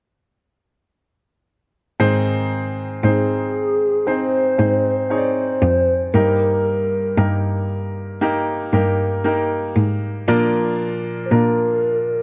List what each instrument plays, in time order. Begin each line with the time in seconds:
2.00 grand piano G#2 D#3 C4 D#4 G#4 C5, cello G#2
3.04 cello G#2, grand piano C4 D#4 G#4 C5, soft synth lead G#4
4.07 grand piano C4 D#4 G#4 C5, soft synth lead C5
4.58 cello G#2, grand piano C4 D#4 G#4 C5
5.10 grand piano C4 D#4 G#4 C#5, soft synth lead C5
5.18 grand piano D5
5.63 cello F2
6.13 cello G2, grand piano G2 G3 A#3 D#4 G4 A#4, soft synth lead A#4
7.17 cello G2, grand piano A#3 D#4 G4 A#4
8.21 grand piano A#3 D#4 G4 A#4
8.73 cello G2, grand piano A#3 D#4 G4 A#4
9.24 grand piano A#3 D#4 G4 A#4
9.76 cello G#2
10.28 grand piano A#2 F3 A#3 D4 F4 A#4, cello A#2
11.26 soft synth lead C5
11.31 cello A#2, grand piano A#3 D4 F4 A#4, soft synth lead A#4